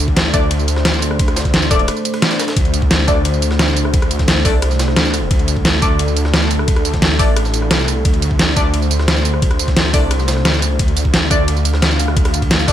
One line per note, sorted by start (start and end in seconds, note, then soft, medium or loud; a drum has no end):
0.00 0.32 D2 loud
0.00 12.73 A3 medium
0.00 12.73 D4 medium
0.00 2.55 C5 medium
0.08 kick medium
0.16 snare loud
0.16 closed hi-hat loud
0.16 ride medium
0.25 snare soft
0.34 1.69 D2 loud
0.34 0.43 A3 medium
0.34 0.43 D4 medium
0.34 0.43 D5 medium
0.34 kick loud
0.34 closed hi-hat medium
0.34 ride medium
0.34 tambourine medium
0.51 closed hi-hat medium
0.51 ride medium
0.59 tambourine soft
0.68 closed hi-hat medium
0.68 ride medium
0.68 tambourine medium
0.76 cross-stick soft
0.76 snare medium
0.85 snare loud
0.85 closed hi-hat loud
0.85 ride medium
0.94 tambourine soft
1.02 closed hi-hat medium
1.02 ride medium
1.02 tambourine medium
1.11 cross-stick medium
1.19 kick loud
1.19 closed hi-hat loud
1.19 ride medium
1.28 cross-stick medium
1.28 closed hi-hat soft
1.36 snare loud
1.36 closed hi-hat medium
1.36 ride medium
1.36 tambourine medium
1.45 kick medium
1.45 snare soft
1.45 closed hi-hat soft
1.54 snare loud
1.54 closed hi-hat loud
1.54 ride medium
1.62 tambourine soft
1.71 1.88 D#1 loud
1.71 1.81 A3 medium
1.71 1.81 D4 medium
1.71 1.81 D5 medium
1.71 kick loud
1.71 open hi-hat medium
1.71 ride medium
1.71 tambourine medium
1.79 closed hi-hat soft
1.88 cross-stick medium
1.88 closed hi-hat loud
1.88 ride medium
1.97 tambourine soft
2.05 closed hi-hat medium
2.05 ride medium
2.05 tambourine medium
2.14 cross-stick soft
2.14 ride medium
2.22 snare loud
2.22 closed hi-hat loud
2.22 ride medium
2.31 snare loud
2.31 ride medium
2.31 tambourine soft
2.39 cross-stick soft
2.39 snare loud
2.39 closed hi-hat medium
2.39 ride medium
2.39 tambourine medium
2.48 snare loud
2.48 ride medium
2.56 3.07 D2 loud
2.56 5.30 C5 medium
2.56 kick loud
2.56 closed hi-hat loud
2.56 ride medium
2.65 closed hi-hat soft
2.74 closed hi-hat medium
2.74 ride medium
2.74 tambourine medium
2.82 kick medium
2.91 snare loud
2.91 closed hi-hat loud
2.91 ride medium
2.99 snare soft
3.08 4.44 D2 loud
3.08 3.18 A3 medium
3.08 3.18 D4 medium
3.08 3.18 D5 medium
3.08 kick loud
3.08 closed hi-hat medium
3.08 ride medium
3.08 tambourine medium
3.25 closed hi-hat medium
3.25 ride medium
3.34 tambourine soft
3.42 closed hi-hat medium
3.42 ride medium
3.42 tambourine medium
3.51 cross-stick soft
3.51 snare medium
3.59 snare loud
3.59 closed hi-hat loud
3.59 ride medium
3.68 tambourine soft
3.76 closed hi-hat medium
3.76 ride medium
3.76 tambourine medium
3.85 cross-stick medium
3.94 kick loud
3.94 closed hi-hat medium
3.94 ride medium
4.02 cross-stick medium
4.02 closed hi-hat soft
4.11 closed hi-hat medium
4.11 ride medium
4.11 tambourine medium
4.19 kick medium
4.19 snare medium
4.19 closed hi-hat soft
4.28 snare loud
4.28 closed hi-hat medium
4.28 ride medium
4.36 snare soft
4.45 4.95 C2 loud
4.45 4.55 A3 medium
4.45 4.55 D4 medium
4.45 4.55 D5 medium
4.45 kick loud
4.45 snare medium
4.45 open hi-hat medium
4.45 tambourine medium
4.62 cross-stick medium
4.62 closed hi-hat medium
4.62 ride medium
4.71 snare soft
4.71 tambourine soft
4.79 snare loud
4.79 closed hi-hat medium
4.79 ride medium
4.79 tambourine medium
4.88 cross-stick soft
4.88 snare soft
4.96 5.29 D2 medium
4.96 snare loud
4.96 closed hi-hat loud
4.96 ride medium
5.05 tambourine soft
5.14 cross-stick soft
5.14 closed hi-hat medium
5.14 ride medium
5.14 tambourine medium
5.31 5.81 D2 loud
5.31 8.04 A4 medium
5.31 kick loud
5.31 closed hi-hat medium
5.31 ride medium
5.39 closed hi-hat soft
5.48 closed hi-hat medium
5.48 ride medium
5.48 tambourine medium
5.56 kick medium
5.65 snare loud
5.65 closed hi-hat medium
5.65 ride medium
5.74 snare soft
5.82 7.18 D2 loud
5.82 5.92 A3 medium
5.82 5.92 D4 medium
5.82 5.92 D5 medium
5.82 kick loud
5.82 closed hi-hat medium
5.82 ride medium
5.82 tambourine medium
5.99 closed hi-hat medium
5.99 ride medium
6.08 tambourine soft
6.16 closed hi-hat medium
6.16 ride medium
6.16 tambourine medium
6.25 cross-stick soft
6.25 snare medium
6.34 snare loud
6.34 closed hi-hat medium
6.34 ride medium
6.42 tambourine soft
6.51 closed hi-hat medium
6.51 ride medium
6.51 tambourine medium
6.59 cross-stick medium
6.68 kick loud
6.68 closed hi-hat medium
6.68 ride medium
6.76 cross-stick medium
6.76 closed hi-hat soft
6.85 closed hi-hat medium
6.85 ride medium
6.85 tambourine medium
6.94 kick medium
6.94 snare medium
6.94 closed hi-hat soft
7.02 snare loud
7.02 closed hi-hat medium
7.02 ride medium
7.11 snare soft
7.19 7.69 A1 loud
7.19 7.29 A3 medium
7.19 7.29 D4 medium
7.19 7.29 D5 medium
7.19 kick loud
7.19 snare medium
7.19 open hi-hat medium
7.19 tambourine medium
7.36 cross-stick medium
7.36 closed hi-hat medium
7.36 ride medium
7.45 snare soft
7.45 tambourine soft
7.54 closed hi-hat medium
7.54 ride medium
7.54 tambourine medium
7.62 cross-stick soft
7.71 8.04 C2 loud
7.71 snare loud
7.71 closed hi-hat medium
7.71 ride medium
7.79 tambourine soft
7.88 cross-stick soft
7.88 closed hi-hat medium
7.88 ride medium
7.88 tambourine medium
8.05 8.55 D2 loud
8.05 10.78 C5 medium
8.05 kick loud
8.05 closed hi-hat medium
8.05 ride medium
8.14 closed hi-hat soft
8.22 closed hi-hat medium
8.22 ride medium
8.22 tambourine medium
8.31 kick medium
8.39 snare loud
8.39 closed hi-hat medium
8.39 ride medium
8.48 snare soft
8.56 9.92 D2 loud
8.56 8.66 A3 medium
8.56 8.66 D4 medium
8.56 8.66 D5 medium
8.56 kick loud
8.56 closed hi-hat medium
8.56 ride medium
8.56 tambourine medium
8.74 closed hi-hat medium
8.74 ride medium
8.82 tambourine soft
8.91 closed hi-hat medium
8.91 ride medium
8.91 tambourine medium
8.99 cross-stick soft
8.99 snare medium
9.08 snare loud
9.08 closed hi-hat medium
9.08 ride medium
9.17 tambourine soft
9.25 closed hi-hat medium
9.25 ride medium
9.25 tambourine medium
9.34 cross-stick medium
9.42 kick loud
9.42 closed hi-hat medium
9.42 ride medium
9.51 cross-stick medium
9.51 closed hi-hat soft
9.59 closed hi-hat medium
9.59 ride medium
9.59 tambourine medium
9.68 kick medium
9.68 snare medium
9.68 closed hi-hat soft
9.77 snare loud
9.77 closed hi-hat medium
9.77 ride medium
9.85 snare soft
9.94 10.44 C2 loud
9.94 10.03 A3 medium
9.94 10.03 D4 medium
9.94 10.03 D5 medium
9.94 kick loud
9.94 snare medium
9.94 open hi-hat medium
9.94 tambourine medium
10.11 cross-stick medium
10.11 closed hi-hat medium
10.11 ride medium
10.19 snare soft
10.19 tambourine soft
10.28 snare loud
10.28 closed hi-hat medium
10.28 ride medium
10.28 tambourine medium
10.37 cross-stick soft
10.37 snare soft
10.45 10.78 D2 medium
10.45 snare loud
10.45 closed hi-hat loud
10.45 ride medium
10.54 tambourine soft
10.62 cross-stick soft
10.62 closed hi-hat medium
10.62 ride medium
10.62 tambourine medium
10.79 11.29 D2 medium
10.79 12.73 F5 medium
10.79 kick loud
10.79 closed hi-hat medium
10.79 ride medium
10.88 closed hi-hat soft
10.96 closed hi-hat medium
10.96 ride medium
10.96 tambourine medium
11.05 kick medium
11.14 snare loud
11.14 closed hi-hat loud
11.14 ride medium
11.22 snare soft
11.31 12.67 D2 loud
11.31 11.41 A3 medium
11.31 11.41 D4 medium
11.31 11.41 D5 medium
11.31 kick loud
11.31 closed hi-hat medium
11.31 ride medium
11.31 tambourine medium
11.48 closed hi-hat loud
11.48 ride medium
11.57 tambourine soft
11.65 closed hi-hat medium
11.65 ride medium
11.65 tambourine medium
11.74 cross-stick soft
11.74 snare medium
11.82 snare loud
11.82 closed hi-hat loud
11.82 ride medium
11.91 tambourine soft
11.99 closed hi-hat medium
11.99 ride medium
11.99 tambourine medium
12.08 cross-stick medium
12.17 kick loud
12.17 closed hi-hat loud
12.17 ride medium
12.25 cross-stick medium
12.25 closed hi-hat soft
12.25 ride medium
12.34 closed hi-hat medium
12.34 tambourine medium
12.42 kick medium
12.42 closed hi-hat soft
12.42 ride medium
12.51 snare loud
12.51 closed hi-hat loud
12.51 ride medium
12.59 snare soft
12.59 tambourine soft
12.68 12.73 D#1 loud
12.68 12.73 A3 medium
12.68 12.73 D4 medium
12.68 12.73 D5 medium
12.68 kick loud
12.68 snare medium
12.68 open hi-hat medium
12.68 tambourine medium